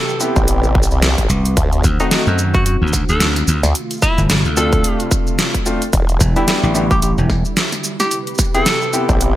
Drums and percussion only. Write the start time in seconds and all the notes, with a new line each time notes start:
0.09 shaker
0.20 shaker
0.36 kick, shaker
0.48 closed hi-hat, shaker
0.64 shaker
0.75 kick
0.83 shaker
0.91 shaker
1.02 snare, closed hi-hat, shaker
1.18 kick, closed hi-hat, shaker
1.30 shaker
1.45 closed hi-hat, shaker
1.57 kick, closed hi-hat, shaker
1.73 closed hi-hat, shaker
1.84 kick, shaker
2.00 closed hi-hat, shaker
2.11 snare, closed hi-hat, shaker
2.27 shaker
2.39 shaker
2.54 kick, shaker
2.66 closed hi-hat, shaker
2.88 shaker
2.93 kick, snare, shaker
3.09 shaker
3.20 snare, closed hi-hat, shaker
3.36 snare, closed hi-hat, shaker
3.48 shaker
3.64 snare, closed hi-hat, shaker
3.75 closed hi-hat, shaker
3.91 closed hi-hat, shaker
3.93 shaker
3.97 shaker
3.98 shaker
4.00 snare, shaker
4.02 kick, shaker
4.18 closed hi-hat, shaker
4.30 snare, closed hi-hat, shaker
4.45 shaker
4.57 shaker
4.73 kick, closed hi-hat, shaker
4.84 closed hi-hat, shaker
5.00 closed hi-hat, shaker
5.11 kick, shaker
5.27 shaker
5.39 snare, closed hi-hat, shaker
5.54 kick, closed hi-hat, shaker
5.66 shaker
5.82 closed hi-hat, shaker
5.93 kick, closed hi-hat, shaker
6.09 closed hi-hat, shaker
6.21 kick, shaker
6.36 closed hi-hat, shaker
6.48 snare, closed hi-hat, shaker
6.64 shaker
6.75 shaker
6.91 kick, shaker
7.02 closed hi-hat, shaker
7.18 shaker
7.30 kick, snare
7.45 shaker
7.57 snare, closed hi-hat, shaker
7.72 snare, closed hi-hat, shaker
7.84 shaker
8.00 snare, closed hi-hat, shaker
8.11 closed hi-hat, shaker
8.27 closed hi-hat, shaker
8.35 snare, shaker
8.39 kick, shaker
8.55 closed hi-hat, shaker
8.66 snare, closed hi-hat, shaker
8.82 shaker
8.93 shaker
9.09 kick, shaker
9.21 closed hi-hat, shaker